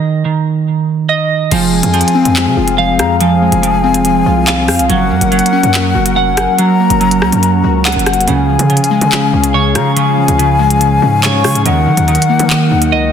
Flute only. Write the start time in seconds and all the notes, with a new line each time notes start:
1.51 G#5
2.99 A#5
3.20 G#5
4.90 F#5
6.37 G#5
6.59 A#5
8.28 G#5
9.75 A#5
9.97 G#5
11.66 F#5